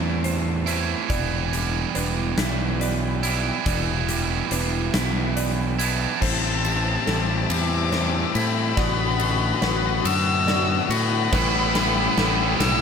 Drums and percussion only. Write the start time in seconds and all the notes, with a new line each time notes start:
0.24 closed hi-hat
0.67 closed hi-hat
1.10 kick, closed hi-hat
1.53 closed hi-hat
1.95 closed hi-hat
2.38 snare, closed hi-hat
2.81 closed hi-hat
3.23 closed hi-hat
3.66 kick, closed hi-hat
4.09 closed hi-hat
4.51 closed hi-hat
4.94 snare, closed hi-hat
5.37 closed hi-hat
5.80 closed hi-hat
6.22 kick, snare, crash
6.65 ride
7.07 snare, ride
7.50 ride
7.92 snare, ride
8.35 ride
8.77 kick, snare, ride
9.20 ride
9.62 snare, ride
10.05 ride
10.48 snare, ride
10.91 ride
11.33 kick, snare, crash
11.75 snare, ride
12.18 snare, ride
12.60 snare, ride